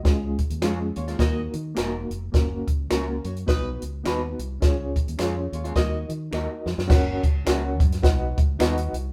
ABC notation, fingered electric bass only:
X:1
M:4/4
L:1/16
Q:"Swing" 1/4=105
K:F#
V:1 name="Fingered electric bass" clef=bass
C,,3 D,, E,,2 D,,2 D,,2 D,2 =E,,,2 ^E,,,2 | F,,,2 C,,2 C,,2 F,,2 B,,,2 C,,2 D,,2 ^B,,,2 | C,,3 D,, E,,2 D,,2 D,,2 D,2 D,, z E,, F,, | F,,,2 C,,2 C,,2 F,,2 B,,,2 C,,2 D,,2 ^B,,,2 |]